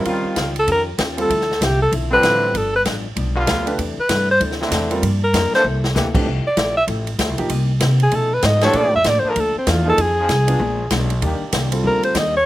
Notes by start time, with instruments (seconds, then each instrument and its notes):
Already playing: grand piano G3 C4 F4 A#4
0.05 upright bass D#2, hollow-body jazz guitar D#3 C#4 F4 G4, trombone section D#3 G3 F4, kick, ride
0.24 muted upright bass stroke
0.36 upright bass C#2, hollow-body jazz guitar D#3 C#4 F4 G4, kick, snare, hi-hat pedal, ride
0.56 alto saxophone A4, ride
0.67 upright bass F2, hollow-body jazz guitar D#3 C#4 F4 G4, kick, ride
0.72 alto saxophone A#4
0.98 upright bass D#2, hollow-body jazz guitar D#3 C#4 F4 G4, kick, snare, hi-hat pedal, ride
1.17 grand piano G3 C4 F4 A4, ride
1.21 alto saxophone A4
1.29 upright bass D2, hollow-body jazz guitar D3 F3 C4 E4, kick, ride
1.41 snare
1.51 snare
1.61 upright bass C2, hollow-body jazz guitar D3 F3 C4 E4, alto saxophone G4, kick, snare, hi-hat pedal, ride
1.82 alto saxophone A4
1.92 upright bass B1, hollow-body jazz guitar D3 F3 C4 E4, kick, ride
2.10 trombone section D3 F3 C4, grand piano G3 C4 F4 A4, alto saxophone B4
2.23 upright bass A1, hollow-body jazz guitar D3 F3 C4 E4, kick, snare, hi-hat pedal, ride
2.54 upright bass G1, hollow-body jazz guitar G2 F3 B3 D4, alto saxophone A4, kick, ride
2.76 alto saxophone B4
2.85 upright bass A1, hollow-body jazz guitar G2 F3 B3 D4, kick, snare, hi-hat pedal, ride
3.16 upright bass B1, hollow-body jazz guitar G2 F3 B3 D4, kick, ride
3.35 trombone section D3 G3 B3 F4
3.47 upright bass D2, hollow-body jazz guitar G2 F3 B3 D4, kick, snare, hi-hat pedal, ride
3.66 grand piano A3 D4 G4 B4, ride
3.78 upright bass E2, hollow-body jazz guitar C3 E3 A3 D4, kick, ride
3.97 alto saxophone B4, muted upright bass stroke
4.09 upright bass G2, hollow-body jazz guitar C3 E3 A3 D4, kick, snare, hi-hat pedal, ride
4.31 alto saxophone C5
4.40 upright bass D2, hollow-body jazz guitar C3 E3 A3 D4, kick, ride
4.51 snare
4.60 trombone section D3 A3 C4 E4, snare
4.71 upright bass E2, hollow-body jazz guitar C3 E3 A3 D4, kick, snare, hi-hat pedal, ride
4.90 grand piano G3 C4 F4 A#4, ride
5.02 upright bass G2, hollow-body jazz guitar G2 F3 A#3 D4, kick, ride
5.24 alto saxophone A#4
5.33 upright bass F2, hollow-body jazz guitar G2 F3 A#3 D4, kick, snare, hi-hat pedal, ride
5.54 trombone section E3 A#3 D4 A4, alto saxophone C5, snare
5.64 upright bass C2, hollow-body jazz guitar C3 A#3 E4 A4
5.84 snare
5.94 upright bass D2, hollow-body jazz guitar C3 A#3 E4 A4, trombone section E3 A#3 D4 G4, snare, hi-hat pedal
6.14 grand piano F2 E3 A3 D4 G4, kick, crash
6.26 upright bass C2, hollow-body jazz guitar F3 A3 E4 G4, kick
6.45 alto saxophone D5, muted upright bass stroke
6.57 upright bass A#1, hollow-body jazz guitar F3 A3 E4 G4, kick, snare, hi-hat pedal, ride
6.77 alto saxophone E5
6.87 upright bass A1, hollow-body jazz guitar F3 A3 E4 G4, kick, ride
7.07 ride
7.19 upright bass D2, hollow-body jazz guitar F3 A3 E4 G4, kick, snare, hi-hat pedal, ride
7.29 upright bass C2
7.37 upright bass A1, grand piano F3 A#3 D#4 G4, ride
7.49 upright bass C2, hollow-body jazz guitar C3 A#3 D#4 G4, kick, ride
7.80 hollow-body jazz guitar C3 A#3 D#4 G4, upright bass C3, kick, snare, hi-hat pedal, ride
8.00 alto saxophone G#4, ride
8.11 upright bass B2, hollow-body jazz guitar B2 F3 A3 D#4, kick, ride
8.16 alto saxophone A4
8.34 alto saxophone B4
8.43 upright bass G#2, hollow-body jazz guitar B2 F3 A3 D#4, alto saxophone D#5, kick, snare, hi-hat pedal, ride
8.61 grand piano E3 A3 D4 G4, trombone section F3 A#3 D4 A4, alto saxophone C#5, snare, ride
8.73 upright bass A#2, hollow-body jazz guitar A#2 F3 A3 D4, alto saxophone D5, kick, ride
8.84 upright bass A2
8.95 upright bass F2, alto saxophone E5
9.04 upright bass A2, hollow-body jazz guitar A#2 F3 A3 D4, kick, snare, hi-hat pedal, ride
9.08 alto saxophone D5
9.19 alto saxophone C5
9.24 trombone section F3 A#3 D4 A4, muted upright bass stroke
9.30 alto saxophone A#4
9.36 upright bass D2, hollow-body jazz guitar A#2 F3 A3 D4, alto saxophone A4, kick, ride
9.55 alto saxophone C4, muted upright bass stroke
9.67 upright bass E2, hollow-body jazz guitar A#2 F3 A3 D4, alto saxophone F4, kick, snare, hi-hat pedal, ride
9.85 grand piano F3 A#3 D#4 G#4
9.89 alto saxophone A4
9.97 upright bass F2, hollow-body jazz guitar F3 C4 D#4 G#4, kick, ride
10.02 alto saxophone G#4
10.19 trombone section F3 C4 D#4 G#4
10.28 upright bass C2, hollow-body jazz guitar F3 C4 D#4 G#4, kick, snare, hi-hat pedal, ride
10.47 grand piano B3 D4 F4 G#4, ride
10.59 upright bass A#1, hollow-body jazz guitar A#2 G#3 B3 D4, kick
10.91 upright bass B1, hollow-body jazz guitar A#2 G#3 B3 D4, kick, snare, hi-hat pedal, ride
11.10 ride
11.22 upright bass D#2, hollow-body jazz guitar D#3 G3 A#3 D4, trombone section D#3 A#3 D4 G4, kick, ride
11.41 muted upright bass stroke
11.52 upright bass C2, hollow-body jazz guitar D#3 G3 A#3 D4, kick, snare, hi-hat pedal, ride
11.72 grand piano G3 C4 F4 A4, ride
11.83 upright bass D2, hollow-body jazz guitar D#3 G3 A#3 D4, alto saxophone A#4, kick
12.03 alto saxophone C5, ride
12.14 upright bass D#2, hollow-body jazz guitar D#3 G3 A#3 D4, alto saxophone D#5, kick, snare, hi-hat pedal, ride
12.37 alto saxophone C#5